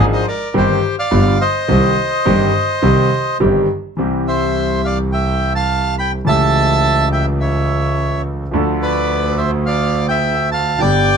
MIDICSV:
0, 0, Header, 1, 4, 480
1, 0, Start_track
1, 0, Key_signature, -3, "minor"
1, 0, Tempo, 570342
1, 1424, Time_signature, 4, 2, 24, 8
1, 3357, Key_signature, 0, "major"
1, 9402, End_track
2, 0, Start_track
2, 0, Title_t, "Bandoneon"
2, 0, Program_c, 0, 23
2, 107, Note_on_c, 0, 75, 83
2, 114, Note_on_c, 0, 72, 61
2, 217, Note_off_c, 0, 75, 0
2, 221, Note_off_c, 0, 72, 0
2, 234, Note_on_c, 0, 74, 85
2, 239, Note_on_c, 0, 70, 65
2, 453, Note_off_c, 0, 74, 0
2, 455, Note_off_c, 0, 70, 0
2, 476, Note_on_c, 0, 72, 79
2, 480, Note_on_c, 0, 67, 66
2, 805, Note_off_c, 0, 72, 0
2, 807, Note_off_c, 0, 67, 0
2, 834, Note_on_c, 0, 77, 96
2, 836, Note_on_c, 0, 74, 70
2, 1165, Note_off_c, 0, 74, 0
2, 1188, Note_on_c, 0, 75, 96
2, 1189, Note_on_c, 0, 72, 72
2, 1199, Note_off_c, 0, 77, 0
2, 2841, Note_off_c, 0, 75, 0
2, 2842, Note_off_c, 0, 72, 0
2, 3599, Note_on_c, 0, 76, 83
2, 3606, Note_on_c, 0, 72, 59
2, 4051, Note_off_c, 0, 72, 0
2, 4079, Note_on_c, 0, 77, 81
2, 4090, Note_on_c, 0, 74, 59
2, 4095, Note_off_c, 0, 76, 0
2, 4187, Note_off_c, 0, 77, 0
2, 4196, Note_off_c, 0, 74, 0
2, 4312, Note_on_c, 0, 79, 74
2, 4323, Note_on_c, 0, 76, 64
2, 4650, Note_off_c, 0, 79, 0
2, 4656, Note_off_c, 0, 76, 0
2, 4672, Note_on_c, 0, 81, 93
2, 4680, Note_on_c, 0, 77, 70
2, 5009, Note_off_c, 0, 81, 0
2, 5013, Note_off_c, 0, 77, 0
2, 5035, Note_on_c, 0, 83, 84
2, 5049, Note_on_c, 0, 79, 71
2, 5144, Note_off_c, 0, 83, 0
2, 5154, Note_off_c, 0, 79, 0
2, 5278, Note_on_c, 0, 81, 124
2, 5290, Note_on_c, 0, 76, 83
2, 5960, Note_off_c, 0, 81, 0
2, 5966, Note_off_c, 0, 76, 0
2, 5996, Note_on_c, 0, 79, 80
2, 6006, Note_on_c, 0, 76, 65
2, 6102, Note_off_c, 0, 79, 0
2, 6110, Note_off_c, 0, 76, 0
2, 6229, Note_on_c, 0, 76, 67
2, 6242, Note_on_c, 0, 73, 57
2, 6913, Note_off_c, 0, 76, 0
2, 6919, Note_off_c, 0, 73, 0
2, 7425, Note_on_c, 0, 74, 86
2, 7427, Note_on_c, 0, 71, 65
2, 7869, Note_off_c, 0, 71, 0
2, 7888, Note_on_c, 0, 76, 72
2, 7898, Note_on_c, 0, 72, 60
2, 7916, Note_off_c, 0, 74, 0
2, 7999, Note_off_c, 0, 76, 0
2, 8007, Note_off_c, 0, 72, 0
2, 8129, Note_on_c, 0, 77, 90
2, 8142, Note_on_c, 0, 74, 66
2, 8469, Note_off_c, 0, 77, 0
2, 8476, Note_off_c, 0, 74, 0
2, 8485, Note_on_c, 0, 79, 82
2, 8502, Note_on_c, 0, 76, 72
2, 8827, Note_off_c, 0, 79, 0
2, 8836, Note_off_c, 0, 76, 0
2, 8852, Note_on_c, 0, 81, 90
2, 8867, Note_on_c, 0, 77, 79
2, 9087, Note_off_c, 0, 77, 0
2, 9088, Note_on_c, 0, 79, 115
2, 9103, Note_off_c, 0, 81, 0
2, 9107, Note_on_c, 0, 74, 90
2, 9402, Note_off_c, 0, 74, 0
2, 9402, Note_off_c, 0, 79, 0
2, 9402, End_track
3, 0, Start_track
3, 0, Title_t, "Grand piano"
3, 0, Program_c, 1, 0
3, 0, Note_on_c, 1, 32, 88
3, 0, Note_on_c, 1, 44, 84
3, 0, Note_on_c, 1, 53, 72
3, 0, Note_on_c, 1, 56, 74
3, 0, Note_on_c, 1, 62, 69
3, 0, Note_on_c, 1, 68, 83
3, 181, Note_off_c, 1, 53, 0
3, 182, Note_off_c, 1, 44, 0
3, 183, Note_off_c, 1, 32, 0
3, 183, Note_off_c, 1, 56, 0
3, 183, Note_off_c, 1, 62, 0
3, 184, Note_off_c, 1, 68, 0
3, 455, Note_on_c, 1, 51, 74
3, 456, Note_on_c, 1, 31, 82
3, 457, Note_on_c, 1, 60, 70
3, 458, Note_on_c, 1, 43, 82
3, 458, Note_on_c, 1, 67, 70
3, 459, Note_on_c, 1, 55, 66
3, 661, Note_off_c, 1, 31, 0
3, 661, Note_off_c, 1, 51, 0
3, 662, Note_off_c, 1, 43, 0
3, 662, Note_off_c, 1, 60, 0
3, 662, Note_off_c, 1, 67, 0
3, 663, Note_off_c, 1, 55, 0
3, 934, Note_on_c, 1, 50, 73
3, 935, Note_on_c, 1, 59, 64
3, 936, Note_on_c, 1, 43, 85
3, 937, Note_on_c, 1, 55, 62
3, 938, Note_on_c, 1, 31, 77
3, 940, Note_on_c, 1, 65, 78
3, 1140, Note_off_c, 1, 50, 0
3, 1141, Note_off_c, 1, 43, 0
3, 1141, Note_off_c, 1, 59, 0
3, 1142, Note_off_c, 1, 31, 0
3, 1142, Note_off_c, 1, 55, 0
3, 1143, Note_off_c, 1, 65, 0
3, 1416, Note_on_c, 1, 51, 66
3, 1417, Note_on_c, 1, 48, 81
3, 1417, Note_on_c, 1, 55, 61
3, 1418, Note_on_c, 1, 36, 77
3, 1420, Note_on_c, 1, 60, 57
3, 1422, Note_on_c, 1, 67, 70
3, 1622, Note_off_c, 1, 51, 0
3, 1623, Note_off_c, 1, 36, 0
3, 1623, Note_off_c, 1, 48, 0
3, 1623, Note_off_c, 1, 55, 0
3, 1624, Note_off_c, 1, 60, 0
3, 1625, Note_off_c, 1, 67, 0
3, 1898, Note_on_c, 1, 51, 75
3, 1898, Note_on_c, 1, 55, 69
3, 1899, Note_on_c, 1, 60, 73
3, 1900, Note_on_c, 1, 43, 82
3, 1902, Note_on_c, 1, 31, 85
3, 1903, Note_on_c, 1, 67, 83
3, 2104, Note_off_c, 1, 51, 0
3, 2104, Note_off_c, 1, 55, 0
3, 2104, Note_off_c, 1, 60, 0
3, 2105, Note_off_c, 1, 43, 0
3, 2106, Note_off_c, 1, 31, 0
3, 2106, Note_off_c, 1, 67, 0
3, 2375, Note_on_c, 1, 51, 67
3, 2377, Note_on_c, 1, 48, 84
3, 2379, Note_on_c, 1, 36, 78
3, 2379, Note_on_c, 1, 55, 59
3, 2379, Note_on_c, 1, 60, 64
3, 2381, Note_on_c, 1, 67, 69
3, 2584, Note_off_c, 1, 51, 0
3, 2585, Note_off_c, 1, 48, 0
3, 2586, Note_off_c, 1, 36, 0
3, 2586, Note_off_c, 1, 55, 0
3, 2586, Note_off_c, 1, 60, 0
3, 2587, Note_off_c, 1, 67, 0
3, 2861, Note_on_c, 1, 51, 69
3, 2864, Note_on_c, 1, 31, 66
3, 2864, Note_on_c, 1, 43, 79
3, 2864, Note_on_c, 1, 55, 53
3, 2866, Note_on_c, 1, 67, 76
3, 2867, Note_on_c, 1, 60, 56
3, 3071, Note_off_c, 1, 51, 0
3, 3073, Note_off_c, 1, 31, 0
3, 3073, Note_off_c, 1, 43, 0
3, 3073, Note_off_c, 1, 55, 0
3, 3073, Note_off_c, 1, 67, 0
3, 3074, Note_off_c, 1, 60, 0
3, 3339, Note_on_c, 1, 52, 50
3, 3349, Note_on_c, 1, 55, 47
3, 3354, Note_on_c, 1, 36, 60
3, 3354, Note_on_c, 1, 48, 63
3, 3359, Note_on_c, 1, 60, 49
3, 3371, Note_on_c, 1, 67, 55
3, 5173, Note_off_c, 1, 52, 0
3, 5178, Note_off_c, 1, 55, 0
3, 5181, Note_off_c, 1, 36, 0
3, 5181, Note_off_c, 1, 48, 0
3, 5183, Note_off_c, 1, 60, 0
3, 5189, Note_off_c, 1, 67, 0
3, 5257, Note_on_c, 1, 52, 55
3, 5270, Note_on_c, 1, 57, 52
3, 5272, Note_on_c, 1, 49, 60
3, 5274, Note_on_c, 1, 37, 64
3, 5281, Note_on_c, 1, 61, 49
3, 5289, Note_on_c, 1, 67, 55
3, 7080, Note_off_c, 1, 52, 0
3, 7087, Note_off_c, 1, 57, 0
3, 7088, Note_off_c, 1, 49, 0
3, 7089, Note_off_c, 1, 37, 0
3, 7093, Note_off_c, 1, 61, 0
3, 7096, Note_off_c, 1, 67, 0
3, 7165, Note_on_c, 1, 53, 51
3, 7178, Note_on_c, 1, 57, 52
3, 7183, Note_on_c, 1, 38, 64
3, 7184, Note_on_c, 1, 50, 71
3, 7190, Note_on_c, 1, 62, 50
3, 7199, Note_on_c, 1, 69, 63
3, 8994, Note_off_c, 1, 53, 0
3, 9000, Note_off_c, 1, 57, 0
3, 9003, Note_off_c, 1, 38, 0
3, 9004, Note_off_c, 1, 50, 0
3, 9007, Note_off_c, 1, 62, 0
3, 9011, Note_off_c, 1, 69, 0
3, 9078, Note_on_c, 1, 50, 53
3, 9088, Note_on_c, 1, 55, 48
3, 9095, Note_on_c, 1, 31, 65
3, 9096, Note_on_c, 1, 43, 63
3, 9100, Note_on_c, 1, 59, 47
3, 9112, Note_on_c, 1, 67, 54
3, 9402, Note_off_c, 1, 31, 0
3, 9402, Note_off_c, 1, 43, 0
3, 9402, Note_off_c, 1, 50, 0
3, 9402, Note_off_c, 1, 55, 0
3, 9402, Note_off_c, 1, 59, 0
3, 9402, Note_off_c, 1, 67, 0
3, 9402, End_track
4, 0, Start_track
4, 0, Title_t, "Double bass"
4, 0, Program_c, 2, 43
4, 0, Note_on_c, 2, 32, 98
4, 186, Note_off_c, 2, 32, 0
4, 466, Note_on_c, 2, 31, 89
4, 666, Note_off_c, 2, 31, 0
4, 945, Note_on_c, 2, 31, 95
4, 1146, Note_off_c, 2, 31, 0
4, 1425, Note_on_c, 2, 36, 98
4, 1627, Note_off_c, 2, 36, 0
4, 1909, Note_on_c, 2, 31, 86
4, 2109, Note_off_c, 2, 31, 0
4, 2387, Note_on_c, 2, 36, 87
4, 2590, Note_off_c, 2, 36, 0
4, 2870, Note_on_c, 2, 31, 93
4, 3075, Note_off_c, 2, 31, 0
4, 3355, Note_on_c, 2, 36, 79
4, 5181, Note_off_c, 2, 36, 0
4, 5280, Note_on_c, 2, 37, 81
4, 7092, Note_off_c, 2, 37, 0
4, 7187, Note_on_c, 2, 38, 84
4, 9005, Note_off_c, 2, 38, 0
4, 9099, Note_on_c, 2, 31, 78
4, 9402, Note_off_c, 2, 31, 0
4, 9402, End_track
0, 0, End_of_file